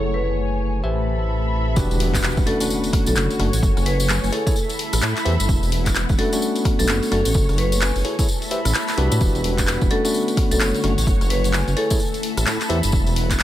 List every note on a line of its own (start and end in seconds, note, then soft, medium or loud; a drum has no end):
0.00 0.82 F#1 medium
0.00 0.81 A3 medium
0.00 0.30 B3 medium
0.00 0.81 E4 medium
0.00 0.82 G#4 medium
0.00 0.82 A4 medium
0.00 0.82 C#5 medium
0.00 0.83 C#5 medium
0.14 0.60 B4 medium
0.30 0.84 G#5 medium
0.84 1.75 A1 medium
0.84 1.74 G4 medium
0.84 2.06 A4 medium
0.84 1.74 B4 medium
0.84 1.74 C5 medium
0.84 1.74 E5 medium
0.94 2.06 B5 medium
1.12 2.06 E5 medium
1.76 1.88 E1 loud
1.76 3.61 D3 medium
1.76 2.43 D4 loud
1.76 2.93 E4 medium
1.76 2.43 F#4 medium
1.76 2.43 G4 medium
1.76 2.43 B4 loud
1.76 3.61 F#5 medium
1.76 kick loud
1.76 tambourine medium
1.76 impact medium
1.90 2.33 E1 loud
1.90 2.93 B4 medium
1.90 closed hi-hat soft
1.90 tambourine soft
2.00 open hi-hat loud
2.10 2.93 F#5 medium
2.14 kick medium
2.14 clap medium
2.14 closed hi-hat medium
2.14 tambourine medium
2.24 clap loud
2.24 tambourine medium
2.37 2.45 E1 medium
2.37 kick loud
2.37 tambourine soft
2.46 2.57 A3 medium
2.46 4.54 A3 medium
2.46 4.02 B3 medium
2.46 2.57 C#4 medium
2.46 2.57 D4 medium
2.46 2.57 F#4 medium
2.46 2.63 A4 medium
2.46 open hi-hat loud
2.55 4.95 F#4 medium
2.60 3.37 A3 medium
2.60 3.37 C#4 medium
2.60 3.37 D4 medium
2.60 3.37 F#4 medium
2.60 closed hi-hat medium
2.60 tambourine medium
2.70 tambourine medium
2.84 closed hi-hat medium
2.84 tambourine soft
2.93 kick loud
2.93 cross-stick medium
2.93 open hi-hat loud
2.97 4.56 C#5 medium
3.06 3.15 B1 loud
3.06 3.19 A4 medium
3.06 closed hi-hat medium
3.06 tambourine medium
3.16 3.28 F#1 medium
3.16 clap loud
3.16 tambourine medium
3.30 closed hi-hat medium
3.30 tambourine soft
3.39 3.51 F#1 medium
3.39 3.48 A3 medium
3.39 3.48 C#4 medium
3.39 3.48 D4 medium
3.39 3.48 F#4 medium
3.39 cross-stick medium
3.39 open hi-hat loud
3.53 3.61 A1 medium
3.53 closed hi-hat medium
3.53 tambourine medium
3.63 3.74 F#1 loud
3.63 5.47 E4 medium
3.63 kick loud
3.63 tambourine medium
3.71 4.56 G#5 medium
3.77 4.19 F#1 loud
3.77 cross-stick soft
3.77 closed hi-hat soft
3.77 tambourine soft
3.86 4.02 B4 medium
3.86 open hi-hat loud
4.00 closed hi-hat medium
4.00 tambourine medium
4.09 clap loud
4.09 tambourine medium
4.23 4.31 F#1 medium
4.23 closed hi-hat soft
4.23 tambourine soft
4.32 4.43 E4 medium
4.32 4.43 G#4 medium
4.32 4.61 A4 medium
4.32 4.43 A4 medium
4.32 4.43 C#5 medium
4.32 open hi-hat medium
4.47 4.55 E4 medium
4.47 4.55 G#4 medium
4.47 4.55 A4 medium
4.47 4.55 C#5 medium
4.47 kick loud
4.47 closed hi-hat medium
4.47 tambourine medium
4.56 6.17 B3 medium
4.56 5.78 A4 medium
4.56 tambourine medium
4.62 5.78 E5 medium
4.69 5.78 B5 medium
4.69 closed hi-hat medium
4.69 tambourine soft
4.79 open hi-hat loud
4.93 5.01 A1 loud
4.93 cross-stick medium
4.93 closed hi-hat medium
4.93 tambourine medium
5.02 5.14 A2 medium
5.02 clap loud
5.02 tambourine medium
5.17 clap medium
5.17 closed hi-hat medium
5.17 tambourine soft
5.25 5.37 E2 medium
5.25 5.34 G4 medium
5.25 5.34 B4 medium
5.25 5.34 C5 medium
5.25 5.34 E5 loud
5.25 open hi-hat loud
5.40 5.47 G1 medium
5.40 closed hi-hat medium
5.40 tambourine medium
5.48 5.60 E1 loud
5.48 7.33 D3 medium
5.48 6.65 E4 medium
5.48 7.33 F#4 medium
5.48 kick loud
5.48 tambourine medium
5.63 6.05 E1 loud
5.63 6.65 B4 medium
5.63 closed hi-hat soft
5.63 tambourine soft
5.72 open hi-hat loud
5.82 6.65 F#5 medium
5.82 kick medium
5.82 tambourine medium
5.86 clap medium
5.86 closed hi-hat medium
5.95 clap loud
5.95 tambourine medium
6.09 6.17 E1 medium
6.09 kick loud
6.09 tambourine soft
6.18 8.25 A3 medium
6.18 6.29 A3 medium
6.18 7.74 B3 medium
6.18 6.29 C#4 medium
6.18 6.29 D4 medium
6.18 6.29 F#4 medium
6.18 6.35 A4 medium
6.18 8.25 C#5 medium
6.18 open hi-hat medium
6.33 7.09 A3 medium
6.33 7.09 C#4 medium
6.33 7.09 D4 medium
6.33 7.09 F#4 medium
6.33 8.67 F#4 medium
6.33 closed hi-hat medium
6.33 tambourine medium
6.42 tambourine medium
6.55 8.28 C#5 medium
6.55 closed hi-hat medium
6.55 tambourine soft
6.65 kick loud
6.65 cross-stick medium
6.65 open hi-hat loud
6.79 6.87 B1 loud
6.79 6.91 A4 loud
6.79 closed hi-hat medium
6.79 tambourine medium
6.87 7.00 F#1 medium
6.87 clap loud
6.87 tambourine medium
7.03 closed hi-hat soft
7.03 tambourine soft
7.12 7.23 F#1 medium
7.12 7.20 A3 medium
7.12 7.20 C#4 medium
7.12 7.20 D4 medium
7.12 7.20 F#4 medium
7.12 7.28 A4 medium
7.12 cross-stick medium
7.12 open hi-hat medium
7.25 7.33 A1 medium
7.25 closed hi-hat medium
7.25 tambourine medium
7.34 7.46 F#1 loud
7.34 kick loud
7.34 tambourine medium
7.49 7.92 F#1 loud
7.49 cross-stick soft
7.49 closed hi-hat soft
7.49 tambourine soft
7.58 8.05 B4 medium
7.58 open hi-hat loud
7.72 closed hi-hat medium
7.72 tambourine medium
7.78 8.28 G#5 medium
7.78 clap loud
7.78 tambourine medium
7.96 8.03 F#1 medium
7.96 closed hi-hat soft
7.96 tambourine soft
8.04 8.15 E4 medium
8.04 8.15 G#4 medium
8.04 8.15 A4 medium
8.04 8.15 C#5 medium
8.04 open hi-hat medium
8.19 8.27 E4 medium
8.19 8.27 G#4 medium
8.19 8.27 A4 medium
8.19 8.27 C#5 medium
8.19 kick loud
8.19 closed hi-hat medium
8.19 tambourine medium
8.28 9.89 B3 medium
8.28 9.50 A4 medium
8.28 tambourine medium
8.39 9.50 E5 medium
8.39 closed hi-hat medium
8.39 tambourine soft
8.48 8.59 G4 medium
8.48 8.59 B4 medium
8.48 8.59 C5 medium
8.48 8.59 E5 medium
8.48 9.50 B5 medium
8.48 open hi-hat loud
8.65 8.73 A1 loud
8.65 cross-stick medium
8.65 closed hi-hat medium
8.65 tambourine medium
8.74 clap loud
8.74 tambourine medium
8.88 clap medium
8.88 closed hi-hat medium
8.88 tambourine soft
8.98 9.09 C2 loud
8.98 9.88 D4 loud
8.98 9.88 F#4 medium
8.98 9.89 G4 medium
8.98 9.89 B4 loud
8.98 open hi-hat medium
9.12 9.19 A2 loud
9.12 closed hi-hat medium
9.12 tambourine medium
9.21 9.33 E1 loud
9.21 11.05 D3 medium
9.21 10.37 E4 medium
9.21 11.05 F#5 medium
9.21 kick loud
9.21 tambourine medium
9.35 9.78 E1 loud
9.35 10.37 B4 medium
9.35 closed hi-hat soft
9.35 tambourine soft
9.44 open hi-hat loud
9.54 10.37 F#5 medium
9.58 kick medium
9.58 clap medium
9.58 closed hi-hat medium
9.58 tambourine medium
9.67 clap loud
9.67 tambourine medium
9.81 9.89 E1 medium
9.81 kick loud
9.81 tambourine soft
9.91 11.98 A3 medium
9.91 10.01 A3 medium
9.91 11.46 B3 medium
9.91 10.01 C#4 medium
9.91 10.01 D4 medium
9.91 10.01 F#4 medium
9.91 10.07 A4 loud
9.91 open hi-hat medium
10.05 10.81 A3 medium
10.05 10.81 C#4 medium
10.05 10.81 D4 medium
10.05 10.81 F#4 medium
10.05 12.39 F#4 medium
10.05 closed hi-hat medium
10.05 tambourine medium
10.14 tambourine medium
10.28 closed hi-hat medium
10.28 tambourine soft
10.37 12.00 C#5 medium
10.37 kick loud
10.37 cross-stick medium
10.37 open hi-hat loud
10.51 10.59 B1 loud
10.51 10.64 A4 medium
10.51 closed hi-hat medium
10.51 tambourine medium
10.60 10.72 F#1 medium
10.60 clap loud
10.60 tambourine medium
10.75 closed hi-hat medium
10.75 tambourine soft
10.84 10.95 F#1 medium
10.84 10.92 A3 medium
10.84 10.92 C#4 medium
10.84 10.92 D4 medium
10.84 10.92 F#4 medium
10.84 cross-stick soft
10.84 open hi-hat medium
10.98 11.05 A1 medium
10.98 closed hi-hat medium
10.98 tambourine medium
11.07 11.18 F#1 loud
11.07 12.91 E4 medium
11.07 kick loud
11.07 tambourine medium
11.21 11.63 F#1 loud
11.21 cross-stick soft
11.21 closed hi-hat soft
11.21 tambourine soft
11.30 11.46 B4 medium
11.30 open hi-hat loud
11.44 closed hi-hat medium
11.44 tambourine medium
11.50 12.00 G#5 medium
11.50 clap loud
11.54 tambourine medium
11.67 11.75 F#1 medium
11.67 closed hi-hat soft
11.67 tambourine soft
11.77 11.87 E4 medium
11.77 11.87 G#4 medium
11.77 11.87 A4 medium
11.77 12.06 A4 medium
11.77 11.87 C#5 medium
11.77 open hi-hat medium
11.90 11.99 E4 medium
11.90 11.99 G#4 medium
11.90 11.99 A4 medium
11.90 11.99 C#5 medium
11.90 kick loud
11.90 closed hi-hat medium
11.90 tambourine medium
12.00 13.43 B3 medium
12.00 13.22 A4 medium
12.00 tambourine medium
12.13 13.22 E5 medium
12.13 closed hi-hat medium
12.13 tambourine soft
12.23 open hi-hat loud
12.37 12.45 A1 loud
12.37 cross-stick medium
12.37 closed hi-hat medium
12.37 tambourine medium
12.43 12.58 A2 medium
12.43 13.22 B5 medium
12.43 clap loud
12.43 tambourine medium
12.61 clap medium
12.61 closed hi-hat medium
12.61 tambourine soft
12.69 12.81 E2 medium
12.69 12.78 G4 loud
12.69 12.78 B4 medium
12.69 12.78 C5 medium
12.69 12.78 E5 loud
12.69 open hi-hat loud
12.83 12.91 G1 medium
12.83 closed hi-hat medium
12.83 tambourine medium
12.92 13.04 E1 loud
12.92 13.43 D3 medium
12.92 13.43 E4 medium
12.92 13.43 F#4 medium
12.92 kick loud
12.92 tambourine medium
13.06 13.43 E1 loud
13.06 closed hi-hat soft
13.06 tambourine soft
13.16 13.43 F#5 medium
13.16 open hi-hat loud
13.22 13.43 B4 medium
13.30 kick medium
13.30 clap medium
13.30 closed hi-hat medium
13.30 tambourine medium
13.40 clap loud
13.40 tambourine medium